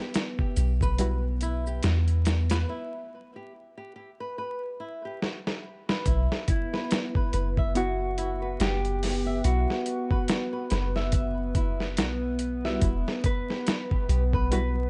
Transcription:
Already playing: B3 G4 B4
0.14 snare, closed hi-hat, maracas
0.39 G4, kick
0.56 B1 G4, closed hi-hat, maracas
0.81 B4, kick, maracas
0.98 G3 E4 F#4 B4, closed hi-hat, maracas
1.41 E4, closed hi-hat, maracas
1.67 G4, maracas
1.83 E2 F#4, snare, closed hi-hat, maracas
2.08 closed hi-hat
2.25 snare, closed hi-hat, maracas
2.50 B4, snare, closed hi-hat, maracas
2.69 E4
3.36 G4
3.77 G4
3.96 G4
4.20 B4
4.38 B4
4.80 E4
5.05 G4
5.22 F#4, snare
5.47 snare
5.89 B4, snare
6.05 B1 B3 E4 B4, kick, closed hi-hat
6.32 snare
6.48 E4, kick, closed hi-hat
6.73 B4, snare
6.91 snare, closed hi-hat
7.15 B4, kick
7.33 F#1 B4, closed hi-hat
7.57 E5, kick
7.75 B3 E4 F#4 E5, closed hi-hat
8.18 E4, closed hi-hat
8.42 B4
8.60 F#1 F#4 G4, snare, closed hi-hat
8.85 closed hi-hat
9.03 snare, open hi-hat
9.26 E5
9.44 B1 E4 F#4, closed hi-hat
9.70 snare
9.86 closed hi-hat
10.11 B4, kick
10.28 snare, closed hi-hat
10.53 B4
10.70 F#1 B4, snare, closed hi-hat
10.96 E5, snare
11.12 E5, kick, closed hi-hat
11.55 E4, kick, closed hi-hat
11.80 B4, snare
11.97 B1 F#4, snare, closed hi-hat
12.39 closed hi-hat
12.65 G3 E4 F#4 E5, snare
12.81 E1 E4, kick, closed hi-hat
13.08 snare
13.24 B4, kick, closed hi-hat
13.50 G4, snare
13.67 snare, closed hi-hat
13.91 G4, kick
14.09 B1 G4, closed hi-hat
14.33 B4, kick
14.51 G3 E4 F#4 B4, closed hi-hat

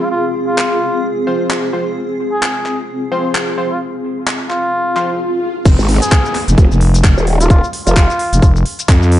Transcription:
Already playing: C4 F4 G#4
0.02 F4
0.12 F4
0.48 F4
0.58 clap
1.27 F3 C4 F4 C5
1.50 clap
1.73 F3 C4 F4 C5
2.33 G#4
2.43 clap
2.66 clap
3.12 F3 C4 F4 C5
3.35 clap
3.58 F3 C4 F4 C5
3.71 F4
4.27 clap
4.50 F4, clap
4.73 swell
4.96 F3 C4 F4 C5, clap
5.65 F1, kick, closed hi-hat, crash, downlifter, shaker
5.79 G#1, shaker
5.89 open hi-hat
6.02 G#4, closed hi-hat, shaker
6.12 kick, clap, closed hi-hat, shaker
6.25 shaker
6.35 clap, open hi-hat
6.48 F1, closed hi-hat, shaker
6.58 F1, kick, closed hi-hat, shaker
6.71 F1, shaker
6.81 open hi-hat
6.94 closed hi-hat, shaker
7.04 kick, clap, closed hi-hat, shaker
7.17 D#1, shaker
7.27 open hi-hat
7.41 F4, closed hi-hat, shaker
7.50 F4, kick, closed hi-hat, shaker
7.64 shaker
7.73 open hi-hat
7.87 F1 F4, closed hi-hat, shaker
7.96 kick, clap, closed hi-hat, shaker
8.10 shaker
8.19 open hi-hat
8.33 F1, closed hi-hat, shaker
8.42 F1, kick, closed hi-hat, shaker
8.56 shaker
8.66 open hi-hat
8.79 closed hi-hat, shaker
8.89 F2, kick, clap, closed hi-hat, shaker
9.03 shaker
9.12 open hi-hat

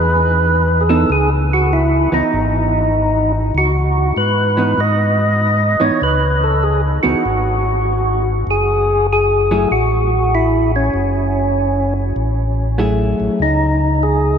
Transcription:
Already playing: E2 B4
0.81 G#4
0.89 E3 B3 D#4 A4
1.10 C#2 G#4
1.53 F#4
1.73 E4
2.12 C#2 E3 B3 D#4
2.33 G#1
3.55 C#2 F#4
4.17 G#2 B4
4.57 E3 B3 D#4
4.78 G#2 D#5
5.80 G#2 E3 B3 D#4 C#5
6.02 C#2 B4
6.43 A4
6.63 G#4
7.03 C#2 E3 B3 D#4 F#4
7.25 G#1
8.47 F#1 G#4
9.13 G#4
9.51 F#3 A3 E4 G#4
9.71 A1 F#4
10.35 E4
10.76 C#4
10.94 F#1
12.16 A1
12.78 F#3 A3 E4 G#4
13.20 A1
13.39 C#2 D#4
14.03 G#4

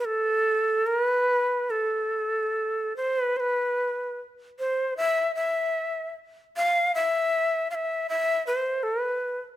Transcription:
0.05 A4
0.87 A#4
1.02 B4
1.70 A4
2.97 C5
3.20 B4
3.37 B4 C5
4.59 C5
4.97 E5
5.35 E5
6.56 F5
6.95 E5
7.71 F5
7.75 E5
8.09 E5
8.47 C5
8.83 A4
9.00 B4

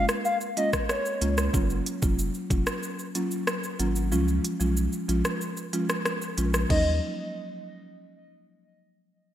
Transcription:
Already playing: G#3 A#3 C#4 F4
0.09 cross-stick, shaker
0.25 F5, shaker
0.41 shaker
0.57 G#3 A#3 C#4 F4 D#5, closed hi-hat, shaker
0.73 kick, cross-stick, shaker
0.89 C#5, cross-stick, shaker
1.06 shaker
1.21 C#2 G#3 A#3 C#4 F4, closed hi-hat, shaker
1.38 cross-stick, shaker
1.53 F#1 F#3 A#3 C#4 F4, kick, shaker
1.70 shaker
1.86 closed hi-hat, shaker
2.02 F1 F#3 A#3 C#4 F4, kick, shaker
2.19 shaker
2.34 shaker
2.50 F1 F#3 A#3 C#4 F4, kick, closed hi-hat, shaker
2.67 cross-stick, shaker
2.83 shaker
2.99 shaker
3.15 F#3 A#3 C#4 F4, closed hi-hat, shaker
3.31 shaker
3.47 cross-stick, shaker
3.64 shaker
3.79 G#1 F#3 A#3 C#4 F4, closed hi-hat, shaker
3.96 shaker
4.12 C#2 F3 G#3 C#4 F4, shaker
4.28 shaker
4.45 closed hi-hat, shaker
4.60 B1 F3 G#3 C#4 F4, shaker
4.77 shaker
4.92 shaker
5.08 A#1 F3 G#3 C#4 F4, closed hi-hat, shaker
5.25 cross-stick, shaker
5.41 shaker
5.57 shaker
5.73 F3 G#3 C#4 F4, closed hi-hat, shaker
5.89 cross-stick, shaker
6.05 cross-stick, shaker
6.22 shaker
6.38 A#1 F3 G#3 C#4 F4, closed hi-hat, shaker
6.54 cross-stick, shaker
6.70 D#2 F#3 A#3 C#4 D#4 D#5, kick, crash

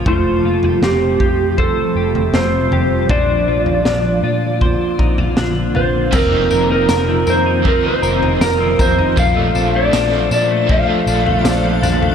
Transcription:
Already playing: F3 C#4 F4
0.06 F1 C3 G3 A3 F4 C5, kick, floor tom
0.44 F1 F4
0.63 G4, floor tom
0.82 F1 C4 G4, snare
1.20 F2 G4, kick
1.58 A4 C5, kick, floor tom
1.95 F1 G4
2.15 floor tom
2.33 F1 C4 C5, snare
2.71 F1 G4, floor tom
3.09 A#1 D3 A#3 C4 D4 C5 D5, kick, floor tom
3.47 A#1 F4
3.66 floor tom
3.85 A#1 D4, snare
4.23 A#2 F4
4.61 C5, kick, floor tom
4.99 A#1 D#4, kick
5.18 F4, floor tom
5.37 A#1 D4, snare
5.75 A#1 F4 C5, floor tom
6.11 F1 F2 C3 D#3 C4 F4 A#4 C5 D#5, kick, floor tom, crash, tambourine
6.17 A#3 D#4
6.32 D#4
6.51 F1 A#4, tambourine
6.70 D#4 A#4
6.89 F1 A#4, snare, tambourine
7.09 C4
7.27 F2 A#4 C5, tambourine
7.46 D#4
7.63 F2 C3 D#3 C4, kick, floor tom
7.68 A#3 D#4 A#4
7.84 D#4 C5
8.02 F1 A#4, tambourine
8.22 D#4, floor tom
8.41 F1 A#4, snare, tambourine
8.60 C4
8.79 F1 A#4 C5, kick, floor tom, tambourine
8.98 D#4, floor tom
9.16 A#1 A#2 F3 A3 D4 A4 F5, kick, floor tom, tambourine
9.36 A3
9.55 A#1 D4, tambourine
9.75 A3 D5
9.91 A#1 A#2 F3 A3 D4, snare, tambourine
9.96 D4
10.13 F3
10.31 A#2 D4 D5, tambourine
10.51 A3
10.67 A#2 F3, kick, floor tom
10.71 A3 D4 F5
10.89 A3
11.07 A#1 D4, tambourine
11.26 A3, floor tom
11.44 A#1 D4, snare, tambourine
11.64 F3
11.82 A#1 D4, floor tom, tambourine
12.02 A3, floor tom

